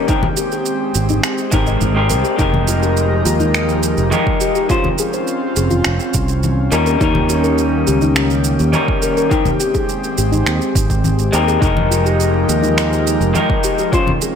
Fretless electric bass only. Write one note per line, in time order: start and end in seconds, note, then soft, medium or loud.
0.95 1.19 G#1 medium
1.53 1.77 G#1 medium
1.81 2.12 G#1 loud
2.11 2.22 C2 medium
2.40 3.22 F1 medium
3.25 3.94 D#2 medium
3.98 4.10 F1 medium
5.57 5.80 F1 medium
5.86 5.98 F1 medium
6.15 6.68 C2 loud
6.72 6.96 D#2 medium
7.01 7.83 D#2 medium
7.88 8.56 C#2 medium
8.60 8.71 D#2 medium
10.18 10.42 G#1 medium
10.47 10.59 D#2 medium
10.76 11.29 G#1 medium
11.33 11.57 D#2 medium
11.62 12.45 F1 medium
12.49 13.17 D#2 medium
13.21 13.33 F1 medium